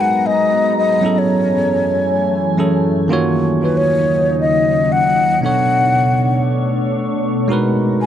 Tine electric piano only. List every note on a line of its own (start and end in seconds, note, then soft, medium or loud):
0.00 0.99 G#3 medium
0.00 0.99 D#4 medium
0.00 1.00 F#4 medium
0.00 1.01 A#4 medium
0.00 1.01 B4 medium
1.01 2.54 F#3 medium
1.01 2.55 C#4 medium
1.01 2.56 E4 medium
1.01 2.56 G#4 medium
1.06 2.57 A4 medium
2.57 3.10 F#3 medium
2.57 3.10 C#4 medium
2.57 3.10 E4 medium
2.57 3.11 G#4 medium
2.57 3.11 A4 medium
3.08 5.12 D#3 medium
3.08 5.13 A#3 medium
3.08 5.13 F4 medium
3.08 5.14 F#4 medium
3.13 5.14 C#5 medium
5.41 7.45 B2 medium
5.41 7.45 B3 medium
5.41 7.46 D4 medium
5.41 7.47 A4 medium
5.46 7.47 C#5 medium
7.48 8.06 G#3 medium
7.48 8.06 D#4 medium
7.48 8.06 F#4 medium
7.48 8.06 A#4 medium
7.53 8.06 B4 medium